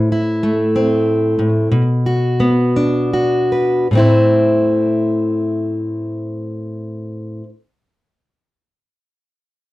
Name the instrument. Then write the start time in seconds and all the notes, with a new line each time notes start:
steel-string acoustic guitar
Already playing: A2 E4
0.12 E4
0.43 A3
0.76 C4
1.39 A2
1.72 B2
2.06 F#4
2.40 B3
2.76 D4
3.14 F#4
3.52 B4
3.91 A2 A3
3.95 C4 E4 C5